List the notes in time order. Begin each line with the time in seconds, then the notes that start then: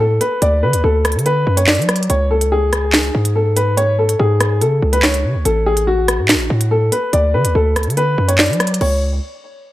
Already playing: A2
0.00 A4
0.21 B4, closed hi-hat
0.42 D2 D5, closed hi-hat
0.63 D3 B4
0.73 D2, closed hi-hat
0.84 D2 A4
1.05 cross-stick, closed hi-hat
1.12 D3, closed hi-hat
1.19 closed hi-hat
1.26 B4, closed hi-hat
1.47 F#2
1.57 C#5, closed hi-hat
1.67 D5, snare, clap, closed hi-hat
1.75 F#3, closed hi-hat
1.82 closed hi-hat
1.89 cross-stick, closed hi-hat
1.96 closed hi-hat
2.03 closed hi-hat
2.10 C#2 C#5, closed hi-hat
2.31 A4
2.41 closed hi-hat
2.52 G#4
2.73 cross-stick, closed hi-hat
2.93 snare, clap, closed hi-hat
3.15 G#2
3.25 closed hi-hat
3.36 A4
3.57 B4, closed hi-hat
3.77 C#5, closed hi-hat
3.99 A4
4.09 closed hi-hat
4.20 G#2 G#4
4.40 cross-stick, closed hi-hat
4.61 C#3 A4, closed hi-hat
4.82 C#2
4.93 B4, closed hi-hat
5.03 C#5, snare, clap, closed hi-hat
5.14 closed hi-hat
5.24 C#3
5.35 C#2
5.45 A1 A4, closed hi-hat
5.66 G#4
5.77 closed hi-hat
5.87 F#4
6.08 cross-stick, closed hi-hat
6.19 A2
6.28 snare, clap, closed hi-hat
6.34 A1
6.50 A2
6.61 closed hi-hat
6.71 A4
6.92 B4, closed hi-hat
7.13 D2 D5, closed hi-hat
7.34 D3 B4
7.45 D2, closed hi-hat
7.55 D2 A4
7.76 cross-stick, closed hi-hat
7.83 D3, closed hi-hat
7.90 closed hi-hat
7.97 B4, closed hi-hat
8.18 F#2
8.28 C#5, closed hi-hat
8.38 D5, snare, clap, closed hi-hat
8.46 F#3, closed hi-hat
8.53 closed hi-hat
8.60 cross-stick, closed hi-hat
8.67 closed hi-hat
8.74 closed hi-hat
8.81 C#2 C#5, crash